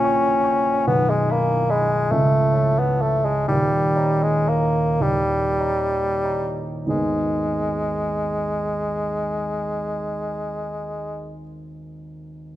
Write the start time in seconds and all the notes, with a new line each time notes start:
Already playing: A#1 A#2 C#4 G5 C#6
0.03 G5 C#6
0.44 G5 C#6
0.87 B0 B1 B3
1.10 G#3
1.29 A#3 D#5 G#5 B5
1.69 G#3 D#5 G#5 B5
2.11 C#1 C#2 A3
2.53 C#5 E5 A5
2.79 B3
2.99 A3 C#5 E5 A5
3.25 G#3
3.48 D#1 D#2 G3
3.96 C#5 D#5 A#5
4.23 G#3
4.46 A#3 C#5 D#5 A#5
5.00 D#1 D#2 G3
5.59 C#5 D#5 A#5
6.23 C#5 D#5 A#5
6.86 G#1 D#2 G#3 B3 D#4 G#4